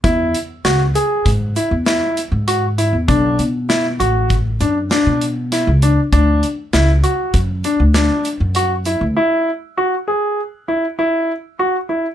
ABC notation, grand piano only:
X:1
M:5/4
L:1/8
Q:1/4=99
K:Emix
V:1 name="Grand piano"
E2 F G2 E E2 F E | D2 E F2 D D2 E D | D2 E F2 D D2 F E | E2 F G2 E E2 F E |]